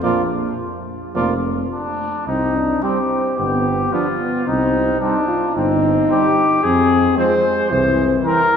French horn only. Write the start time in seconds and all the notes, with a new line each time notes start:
0.03 A#3
1.15 A#3
2.27 C4
2.56 D4
2.84 C4
3.38 B3
3.93 D4
4.19 B3
4.47 C4
5.00 D#4
5.28 F4
5.54 D#4
6.64 C4
7.17 G#3
7.70 E3